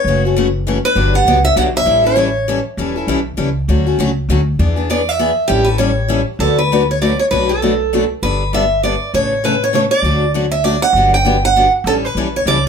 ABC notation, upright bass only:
X:1
M:3/4
L:1/8
Q:"Swing" 1/4=198
K:D
V:1 name="Upright bass" clef=bass
F,,,6 | G,,,2 C,,2 B,,,2 | A,,,6 | E,,,2 B,,,2 C,,2 |
D,,2 C,,2 D,,2 | E,,6 | A,,,6 | D,,6 |
B,,,6 | G,,,6 | A,,,6 | D,,6 |
G,,,6 | A,,,2 B,,,2 C,,2 |]